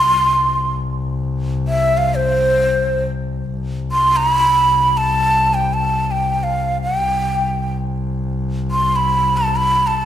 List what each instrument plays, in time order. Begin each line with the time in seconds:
Already playing: ney C6
0.07 double bass C2
1.68 ney E5
1.97 ney F5
2.15 ney C5
3.51 double bass C2
3.92 ney C6
4.16 ney A#5
4.29 ney B5
4.97 ney A5
5.54 ney G5
5.74 ney A5
6.11 ney G5
6.43 ney F5
6.82 ney G5
6.94 double bass C2
8.71 ney C6
8.96 ney B5
9.37 ney A5
9.56 ney B5
9.87 ney A5